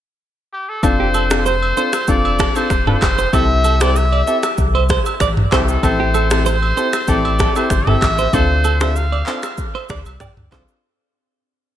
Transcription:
0.53 G4
0.69 A4
0.83 F1 C4 D4 F4 A4 C5, kick, high agogo, shaker
1.00 G4
1.14 A4, high agogo, shaker
1.30 C4 D4 F4 A4, finger snap, cross-stick, shaker
1.46 C5, shaker
1.62 high agogo
1.77 C4 D4 F4 A4 C5, shaker
1.93 finger snap, cross-stick, high agogo, shaker
2.08 F1 C4 D4 F4 A4 D5, kick, shaker
2.25 high agogo
2.39 A4, finger snap, kick, cross-stick, shaker
2.55 C4 D4 F4 A4 C5, high agogo, shaker
2.70 E1, finger snap, kick, cross-stick, shaker
2.87 C4 D4 F4 A4 C5, mid tom
3.01 F1, finger snap, kick, cross-stick, clap, high agogo, shaker
3.18 C5, shaker
3.33 C2 C4 E4 G4 A4 E5, kick, high agogo, shaker
3.64 A4, high agogo, shaker
3.80 C4 E4 G4 A4 C5 D5, finger snap, cross-stick, shaker
3.96 E5, shaker
4.12 D5, high agogo
4.27 C4 E4 G4 A4 E5, shaker
4.43 finger snap, cross-stick, high agogo, shaker
4.58 C2, kick, shaker
4.75 C5, high agogo
4.89 C5, finger snap, kick, cross-stick, shaker
5.05 high agogo, shaker
5.20 A1 D5, finger snap, kick, cross-stick, shaker
5.37 mid tom
5.51 C2 C4 E4 G4 A4 C5, finger snap, kick, cross-stick, clap, high agogo, shaker
5.68 A4, shaker
5.83 A1 C4 E4 G4 A4 C5, kick, high agogo, shaker
6.00 G4
6.14 A4, high agogo, shaker
6.30 C4 E4 G4 A4, finger snap, cross-stick, shaker
6.46 C5, shaker
6.62 high agogo
6.77 C4 E4 G4 A4 C5, shaker
6.93 finger snap, cross-stick, high agogo, shaker
7.08 A1 C4 E4 G4 A4 D5, kick, shaker
7.25 high agogo
7.39 A4, finger snap, kick, cross-stick, shaker
7.55 C4 E4 G4 A4 C5, high agogo, shaker
7.70 G1, finger snap, kick, cross-stick, shaker
7.87 C4 E4 G4 A4 E5, mid tom
8.01 A1, finger snap, kick, cross-stick, clap, high agogo, shaker
8.18 C5, shaker
8.33 D2 C4 D4 F4 A4 C5, kick, high agogo, shaker
8.64 A4, high agogo, shaker
8.80 C4 D4 F4 A4 C5 E5, finger snap, cross-stick, shaker
8.96 F5, shaker
9.12 D5, high agogo
9.26 C4 D4 F4 A4 C5, clap, shaker
9.43 finger snap, cross-stick, high agogo, shaker
9.58 kick, shaker
9.75 C5, high agogo
9.89 D2 D5, finger snap, kick, cross-stick, shaker
10.05 C2, high agogo, shaker
10.20 D5, finger snap, kick, cross-stick, mid tom, low woodblock, shaker
10.37 D2, mid tom
10.51 C2 C4 D4 F4 A4 C5, finger snap, kick, cross-stick, clap, high agogo, shaker
10.68 shaker

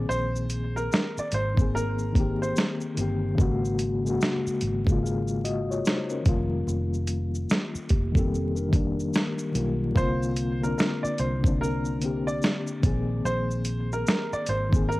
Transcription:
Already playing: D#3 A#3 C4 G#4
0.09 A#1 C5, shaker
0.36 shaker
0.50 closed hi-hat, shaker
0.76 A#4, shaker
0.92 A#4, snare, shaker
1.18 D5, muted fingered electric bass stroke, shaker
1.32 G#1 C5, closed hi-hat, shaker
1.55 D#3 A#3, kick
1.59 C4 G#4, shaker
1.75 A#4, shaker
1.99 shaker
2.13 D#3 A#3, kick, closed hi-hat, shaker
2.17 C4 G4
2.42 C5, shaker
2.56 snare, shaker
2.81 shaker
2.95 G1 D#3 A#3, closed hi-hat, shaker
2.99 C4 G4
3.35 G#1 C#3 G#3, kick
3.39 A#3 F#4, shaker
3.65 shaker
3.79 closed hi-hat, shaker
4.03 C#3 G#3, shaker
4.08 A#3 F#4
4.21 snare, shaker
4.47 muted fingered electric bass stroke, shaker
4.61 G#1, closed hi-hat, shaker
4.85 C#3 G#3, kick, shaker
4.90 A#3 F4
5.04 G#4 F5, shaker
5.28 shaker
5.45 F#4 D#5, closed hi-hat, shaker
5.71 F4 C#5, shaker
5.85 D#4 C5, snare, shaker
6.10 C#4 A#4, shaker
6.22 F1 D#3 G3, kick, closed hi-hat, shaker
6.27 A#3 F4
6.67 F1, shaker
6.94 shaker
7.07 closed hi-hat, shaker
7.35 shaker
7.50 snare, shaker
7.75 muted fingered electric bass stroke, shaker
7.89 F1 A#3 G4, kick, closed hi-hat, shaker
8.12 D#3 G3 A4, kick
8.17 A#3 C4 G4, shaker
8.35 shaker
8.56 D4 A#4, shaker
8.69 D#3 G3, kick
8.73 A#3 D4, closed hi-hat, shaker
9.00 shaker
9.14 snare, shaker
9.39 shaker
9.51 B1 D#3 G3, closed hi-hat, shaker
9.56 A#3 F4
9.92 C2 D3 A#3, kick
9.97 C4 F4 C5, shaker
10.23 shaker
10.36 closed hi-hat, shaker
10.60 D3 A#3 A#4
10.64 C4 D4, shaker
10.78 A#4, snare, shaker
11.03 D5, muted fingered electric bass stroke, shaker
11.18 C2 C5, closed hi-hat, shaker
11.41 D3 A#3, kick
11.46 C4 D4, shaker
11.61 A#4, shaker
11.85 shaker
11.99 D3 A#3, closed hi-hat, shaker
12.03 C4 G4
12.27 D5, shaker
12.42 snare, shaker
12.67 shaker
12.80 A#1 D3 A#3, kick, closed hi-hat, shaker
12.84 D#3 C4 G#4
13.25 A#1 C5, shaker
13.51 shaker
13.65 closed hi-hat, shaker
13.93 A#4, shaker
14.07 A#4, snare, shaker
14.33 D5, muted fingered electric bass stroke, shaker
14.46 G#1 C5, closed hi-hat, shaker
14.69 D#3 A#3, kick
14.74 C4 G#4, shaker
14.89 A#4, shaker

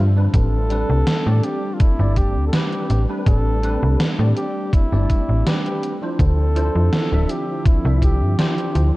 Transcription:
Already playing: G2 D3 F3 C4 D4 F4 C5 E5
0.16 G3 C4 D4 B4
0.34 A1 A3 G4 A4, kick, closed hi-hat
0.70 G3 C4 D4 B4, closed hi-hat
0.90 C2
1.07 snare, closed hi-hat
1.25 A2 G3 C4 D4 D5
1.43 G4, closed hi-hat
1.74 F4
1.80 G1 E4, kick, closed hi-hat
1.99 G1 G3 C4 D4 D5
2.16 G4, kick, closed hi-hat
2.36 D2
2.47 A4
2.52 G3 C4 D4 G4 B4, snare, closed hi-hat
2.73 closed hi-hat
2.90 A1, closed hi-hat
3.08 G3 C4 D4 B4
3.26 A1 A4, kick, closed hi-hat
3.62 G3 C4 D4 B4, closed hi-hat
3.83 C2
4.00 snare, closed hi-hat
4.18 A2 G3 C4 D4 D5
4.37 G4, closed hi-hat
4.73 E4, kick, closed hi-hat
4.92 G1 G3 C4 D4 D5
5.09 kick, closed hi-hat
5.29 A1
5.45 G3 C4 D4 G4 B4, snare, closed hi-hat
5.66 closed hi-hat
5.83 closed hi-hat
6.01 F3 D4 E4 C5
6.19 D2 D3 F3 C4 E4 A4, kick, closed hi-hat
6.55 F3 D4 E4 C5, closed hi-hat
6.75 F2
6.93 snare, closed hi-hat
7.11 D1 F3 D4 E4 E5
7.29 G4, closed hi-hat
7.65 C2 E4, kick, closed hi-hat
7.84 C2 F3 D4 E4 E5
8.02 G4, kick, closed hi-hat
8.22 G2
8.38 F3 D4 E4 G4 C5, snare, closed hi-hat
8.58 closed hi-hat
8.75 D2, closed hi-hat

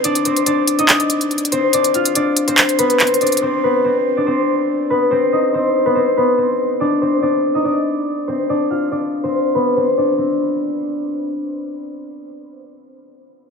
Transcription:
Already playing: C4 D#4 C5 D#5
0.04 D4 D5, closed hi-hat
0.15 closed hi-hat
0.25 C4 C5, closed hi-hat
0.36 closed hi-hat
0.46 D4 D5, closed hi-hat
0.67 closed hi-hat
0.79 D#4 D#5, closed hi-hat
0.89 D4, clap, closed hi-hat
1.00 closed hi-hat
1.10 closed hi-hat
1.21 closed hi-hat
1.31 closed hi-hat
1.38 closed hi-hat
1.45 closed hi-hat
1.52 C4 C5, closed hi-hat
1.73 D4 D5, closed hi-hat
1.84 closed hi-hat
1.94 F4 F5, closed hi-hat
2.05 closed hi-hat
2.15 D4 D5, closed hi-hat
2.37 closed hi-hat
2.48 C4 C5, closed hi-hat
2.58 clap, closed hi-hat
2.69 closed hi-hat
2.79 B3 B4, closed hi-hat
2.90 closed hi-hat
3.00 C4 C5, clap, closed hi-hat
3.07 closed hi-hat
3.14 closed hi-hat
3.21 D4 D5, closed hi-hat
3.27 closed hi-hat
3.32 closed hi-hat
3.37 closed hi-hat
3.42 C4 C5
3.64 B3 B4
3.84 C4 C5
4.17 D4 D5
4.27 C4 C5
4.90 B3 B4
5.11 C4 C5
5.32 D#4 D#5
5.54 C4 C5
5.86 B3 B4
5.95 C4 C5
6.17 B3 B4
6.38 C4 C5
6.80 D4 D5
7.02 C4 C5
7.22 D4 D5
7.55 D#4 D#5
7.65 D4 D5
8.28 C4 C5
8.49 D4 D5
8.70 F4 F5
8.91 D4 D5
9.24 C4 C5
9.55 B3 B4
9.76 C4 C5
9.98 D4 D5
10.18 C4

